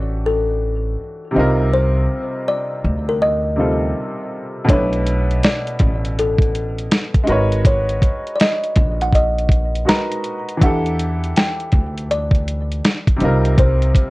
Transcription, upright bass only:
0, 0, Header, 1, 2, 480
1, 0, Start_track
1, 0, Tempo, 740741
1, 1116, Time_signature, 4, 2, 24, 8
1, 9137, End_track
2, 0, Start_track
2, 0, Title_t, "Upright bass"
2, 0, Program_c, 0, 32
2, 0, Note_on_c, 0, 33, 98
2, 614, Note_off_c, 0, 33, 0
2, 883, Note_on_c, 0, 36, 82
2, 1333, Note_off_c, 0, 36, 0
2, 1844, Note_on_c, 0, 38, 96
2, 2534, Note_off_c, 0, 38, 0
2, 3040, Note_on_c, 0, 35, 99
2, 3492, Note_off_c, 0, 35, 0
2, 3760, Note_on_c, 0, 33, 101
2, 4452, Note_off_c, 0, 33, 0
2, 4722, Note_on_c, 0, 32, 90
2, 5173, Note_off_c, 0, 32, 0
2, 5682, Note_on_c, 0, 34, 117
2, 6373, Note_off_c, 0, 34, 0
2, 6882, Note_on_c, 0, 40, 96
2, 7333, Note_off_c, 0, 40, 0
2, 7602, Note_on_c, 0, 38, 102
2, 8293, Note_off_c, 0, 38, 0
2, 8564, Note_on_c, 0, 36, 89
2, 9014, Note_off_c, 0, 36, 0
2, 9137, End_track
0, 0, End_of_file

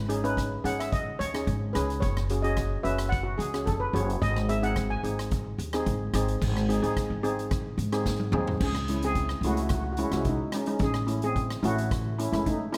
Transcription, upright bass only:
0, 0, Header, 1, 2, 480
1, 0, Start_track
1, 0, Tempo, 549451
1, 1764, Time_signature, 4, 2, 24, 8
1, 11159, End_track
2, 0, Start_track
2, 0, Title_t, "Upright bass"
2, 0, Program_c, 0, 32
2, 0, Note_on_c, 0, 32, 97
2, 483, Note_off_c, 0, 32, 0
2, 561, Note_on_c, 0, 32, 76
2, 989, Note_off_c, 0, 32, 0
2, 1049, Note_on_c, 0, 39, 87
2, 1260, Note_off_c, 0, 39, 0
2, 1286, Note_on_c, 0, 32, 97
2, 1498, Note_off_c, 0, 32, 0
2, 1530, Note_on_c, 0, 37, 86
2, 1740, Note_off_c, 0, 37, 0
2, 1763, Note_on_c, 0, 30, 94
2, 2403, Note_off_c, 0, 30, 0
2, 2485, Note_on_c, 0, 30, 78
2, 2911, Note_off_c, 0, 30, 0
2, 2959, Note_on_c, 0, 37, 90
2, 3174, Note_off_c, 0, 37, 0
2, 3208, Note_on_c, 0, 30, 82
2, 3419, Note_off_c, 0, 30, 0
2, 3436, Note_on_c, 0, 30, 93
2, 3653, Note_off_c, 0, 30, 0
2, 3683, Note_on_c, 0, 32, 104
2, 4323, Note_off_c, 0, 32, 0
2, 4396, Note_on_c, 0, 32, 81
2, 4826, Note_off_c, 0, 32, 0
2, 4878, Note_on_c, 0, 39, 85
2, 5094, Note_off_c, 0, 39, 0
2, 5121, Note_on_c, 0, 32, 89
2, 5335, Note_off_c, 0, 32, 0
2, 5359, Note_on_c, 0, 32, 95
2, 5574, Note_off_c, 0, 32, 0
2, 5603, Note_on_c, 0, 32, 105
2, 5927, Note_off_c, 0, 32, 0
2, 5962, Note_on_c, 0, 44, 79
2, 6178, Note_off_c, 0, 44, 0
2, 6202, Note_on_c, 0, 32, 78
2, 6733, Note_off_c, 0, 32, 0
2, 6793, Note_on_c, 0, 44, 97
2, 7224, Note_off_c, 0, 44, 0
2, 7268, Note_on_c, 0, 39, 109
2, 7488, Note_off_c, 0, 39, 0
2, 7515, Note_on_c, 0, 37, 90
2, 8158, Note_off_c, 0, 37, 0
2, 8221, Note_on_c, 0, 37, 88
2, 8768, Note_off_c, 0, 37, 0
2, 8836, Note_on_c, 0, 36, 78
2, 9055, Note_off_c, 0, 36, 0
2, 9430, Note_on_c, 0, 33, 104
2, 10076, Note_off_c, 0, 33, 0
2, 10157, Note_on_c, 0, 33, 91
2, 10698, Note_off_c, 0, 33, 0
2, 10767, Note_on_c, 0, 30, 78
2, 10981, Note_off_c, 0, 30, 0
2, 11159, End_track
0, 0, End_of_file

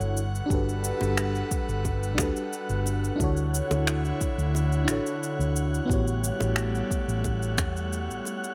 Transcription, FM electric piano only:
0, 0, Header, 1, 2, 480
1, 0, Start_track
1, 0, Key_signature, 2, "major"
1, 0, Tempo, 674157
1, 357, Time_signature, 4, 2, 24, 8
1, 6082, End_track
2, 0, Start_track
2, 0, Title_t, "FM electric piano"
2, 0, Program_c, 0, 5
2, 0, Control_c, 0, 64, 127
2, 0, Note_on_c, 0, 62, 72
2, 0, Note_on_c, 0, 64, 65
2, 0, Note_on_c, 0, 66, 67
2, 0, Note_on_c, 0, 69, 65
2, 0, Note_on_c, 0, 73, 79
2, 96, Note_off_c, 0, 62, 0
2, 99, Note_off_c, 0, 64, 0
2, 103, Note_off_c, 0, 66, 0
2, 106, Note_off_c, 0, 69, 0
2, 110, Note_off_c, 0, 73, 0
2, 127, Control_c, 0, 64, 0
2, 256, Control_c, 0, 64, 127
2, 327, Note_on_c, 0, 62, 86
2, 342, Note_on_c, 0, 66, 75
2, 357, Note_on_c, 0, 67, 72
2, 372, Note_on_c, 0, 69, 74
2, 386, Note_on_c, 0, 71, 96
2, 1515, Note_off_c, 0, 62, 0
2, 1522, Note_off_c, 0, 66, 0
2, 1529, Note_off_c, 0, 67, 0
2, 1530, Note_on_c, 0, 62, 77
2, 1537, Note_off_c, 0, 69, 0
2, 1544, Note_off_c, 0, 71, 0
2, 1545, Note_on_c, 0, 66, 69
2, 1559, Note_on_c, 0, 67, 68
2, 1574, Note_on_c, 0, 69, 69
2, 1588, Note_on_c, 0, 71, 88
2, 2236, Note_off_c, 0, 62, 0
2, 2243, Note_off_c, 0, 66, 0
2, 2248, Note_on_c, 0, 62, 86
2, 2250, Note_off_c, 0, 67, 0
2, 2258, Note_off_c, 0, 69, 0
2, 2263, Note_on_c, 0, 64, 79
2, 2265, Note_off_c, 0, 71, 0
2, 2277, Note_on_c, 0, 66, 76
2, 2286, Control_c, 0, 64, 0
2, 2291, Note_on_c, 0, 69, 76
2, 2305, Note_on_c, 0, 73, 96
2, 2391, Control_c, 0, 64, 127
2, 3435, Note_off_c, 0, 62, 0
2, 3442, Note_off_c, 0, 64, 0
2, 3449, Note_off_c, 0, 66, 0
2, 3450, Note_on_c, 0, 62, 76
2, 3456, Note_off_c, 0, 69, 0
2, 3464, Note_off_c, 0, 73, 0
2, 3464, Note_on_c, 0, 64, 68
2, 3478, Note_on_c, 0, 66, 65
2, 3492, Note_on_c, 0, 69, 66
2, 3505, Note_on_c, 0, 73, 86
2, 4156, Note_off_c, 0, 62, 0
2, 4163, Note_off_c, 0, 64, 0
2, 4169, Note_on_c, 0, 59, 82
2, 4170, Note_off_c, 0, 66, 0
2, 4177, Note_off_c, 0, 69, 0
2, 4182, Note_on_c, 0, 64, 73
2, 4184, Note_off_c, 0, 73, 0
2, 4198, Note_on_c, 0, 66, 75
2, 4207, Control_c, 0, 64, 0
2, 4211, Note_on_c, 0, 67, 77
2, 4226, Note_on_c, 0, 73, 90
2, 4313, Control_c, 0, 64, 127
2, 5355, Note_off_c, 0, 59, 0
2, 5362, Note_off_c, 0, 64, 0
2, 5370, Note_off_c, 0, 66, 0
2, 5376, Note_off_c, 0, 67, 0
2, 5384, Note_off_c, 0, 73, 0
2, 6082, End_track
0, 0, End_of_file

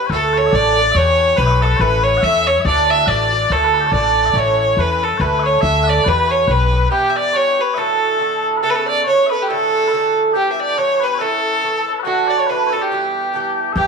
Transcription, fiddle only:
0, 0, Header, 1, 2, 480
1, 0, Start_track
1, 0, Tempo, 427046
1, 109, Time_signature, 2, 2, 24, 8
1, 15593, End_track
2, 0, Start_track
2, 0, Title_t, "Fiddle"
2, 0, Program_c, 0, 110
2, 137, Note_on_c, 0, 69, 85
2, 423, Note_on_c, 0, 73, 93
2, 440, Note_off_c, 0, 69, 0
2, 618, Note_on_c, 0, 74, 105
2, 634, Note_off_c, 0, 73, 0
2, 1077, Note_on_c, 0, 73, 106
2, 1094, Note_off_c, 0, 74, 0
2, 1541, Note_on_c, 0, 71, 97
2, 1558, Note_off_c, 0, 73, 0
2, 1822, Note_on_c, 0, 69, 86
2, 1838, Note_off_c, 0, 71, 0
2, 2024, Note_on_c, 0, 71, 96
2, 2041, Note_off_c, 0, 69, 0
2, 2290, Note_on_c, 0, 73, 97
2, 2307, Note_off_c, 0, 71, 0
2, 2511, Note_on_c, 0, 76, 109
2, 2528, Note_off_c, 0, 73, 0
2, 2773, Note_on_c, 0, 73, 96
2, 2790, Note_off_c, 0, 76, 0
2, 2977, Note_off_c, 0, 73, 0
2, 2995, Note_on_c, 0, 74, 95
2, 3258, Note_on_c, 0, 76, 97
2, 3275, Note_off_c, 0, 74, 0
2, 3460, Note_on_c, 0, 74, 94
2, 3477, Note_off_c, 0, 76, 0
2, 3954, Note_on_c, 0, 69, 92
2, 3971, Note_off_c, 0, 74, 0
2, 4423, Note_off_c, 0, 69, 0
2, 4433, Note_on_c, 0, 74, 90
2, 4925, Note_on_c, 0, 73, 91
2, 4942, Note_off_c, 0, 74, 0
2, 5398, Note_on_c, 0, 71, 90
2, 5415, Note_off_c, 0, 73, 0
2, 5659, Note_on_c, 0, 69, 77
2, 5676, Note_off_c, 0, 71, 0
2, 5853, Note_on_c, 0, 71, 83
2, 5870, Note_off_c, 0, 69, 0
2, 6132, Note_on_c, 0, 73, 97
2, 6149, Note_off_c, 0, 71, 0
2, 6317, Note_off_c, 0, 73, 0
2, 6324, Note_on_c, 0, 76, 98
2, 6619, Note_on_c, 0, 74, 86
2, 6636, Note_off_c, 0, 76, 0
2, 6834, Note_on_c, 0, 71, 96
2, 6851, Note_off_c, 0, 74, 0
2, 7090, Note_on_c, 0, 73, 85
2, 7107, Note_off_c, 0, 71, 0
2, 7311, Note_on_c, 0, 71, 90
2, 7328, Note_off_c, 0, 73, 0
2, 7761, Note_off_c, 0, 71, 0
2, 7768, Note_on_c, 0, 67, 90
2, 7980, Note_on_c, 0, 76, 57
2, 7997, Note_off_c, 0, 67, 0
2, 8049, Note_on_c, 0, 74, 99
2, 8066, Note_off_c, 0, 76, 0
2, 8269, Note_on_c, 0, 73, 102
2, 8285, Note_off_c, 0, 74, 0
2, 8549, Note_on_c, 0, 71, 84
2, 8566, Note_off_c, 0, 73, 0
2, 8743, Note_on_c, 0, 69, 94
2, 8760, Note_off_c, 0, 71, 0
2, 9495, Note_off_c, 0, 69, 0
2, 9697, Note_on_c, 0, 69, 89
2, 9777, Note_on_c, 0, 71, 72
2, 9794, Note_off_c, 0, 69, 0
2, 9839, Note_on_c, 0, 69, 81
2, 9855, Note_off_c, 0, 71, 0
2, 9971, Note_off_c, 0, 69, 0
2, 9977, Note_on_c, 0, 74, 91
2, 10163, Note_off_c, 0, 74, 0
2, 10194, Note_on_c, 0, 73, 95
2, 10443, Note_off_c, 0, 73, 0
2, 10465, Note_on_c, 0, 71, 90
2, 10589, Note_on_c, 0, 67, 72
2, 10606, Note_off_c, 0, 71, 0
2, 10676, Note_on_c, 0, 69, 99
2, 10693, Note_off_c, 0, 67, 0
2, 11425, Note_off_c, 0, 69, 0
2, 11641, Note_on_c, 0, 67, 89
2, 11820, Note_off_c, 0, 67, 0
2, 11827, Note_on_c, 0, 76, 52
2, 11910, Note_on_c, 0, 74, 90
2, 11927, Note_off_c, 0, 76, 0
2, 12116, Note_on_c, 0, 73, 96
2, 12133, Note_off_c, 0, 74, 0
2, 12397, Note_on_c, 0, 71, 83
2, 12414, Note_off_c, 0, 73, 0
2, 12602, Note_on_c, 0, 69, 96
2, 12619, Note_off_c, 0, 71, 0
2, 13352, Note_off_c, 0, 69, 0
2, 13548, Note_on_c, 0, 66, 82
2, 13826, Note_on_c, 0, 74, 78
2, 13843, Note_off_c, 0, 66, 0
2, 13930, Note_on_c, 0, 73, 71
2, 13947, Note_off_c, 0, 74, 0
2, 14044, Note_on_c, 0, 71, 84
2, 14061, Note_off_c, 0, 73, 0
2, 14304, Note_on_c, 0, 69, 75
2, 14321, Note_off_c, 0, 71, 0
2, 14409, Note_on_c, 0, 67, 75
2, 14426, Note_off_c, 0, 69, 0
2, 15132, Note_off_c, 0, 67, 0
2, 15477, Note_on_c, 0, 67, 91
2, 15593, Note_off_c, 0, 67, 0
2, 15593, End_track
0, 0, End_of_file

